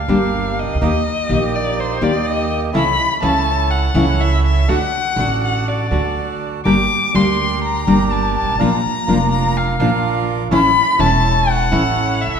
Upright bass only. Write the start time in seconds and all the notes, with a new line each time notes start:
0.08 G1
0.63 C2
0.68 C#2
0.75 D2
0.82 D#2
1.30 A#1
2.02 D#2
2.75 C#2
3.22 C#2
3.95 C#2
4.69 D2
5.16 A1
5.91 D2
6.65 G1
7.15 D2
7.88 G1
8.42 G1
8.49 G#1
8.55 A1
8.61 A#1
9.08 F1
9.80 A#1
10.51 A1
10.99 E1
11.72 A1
12.27 B1
12.34 C2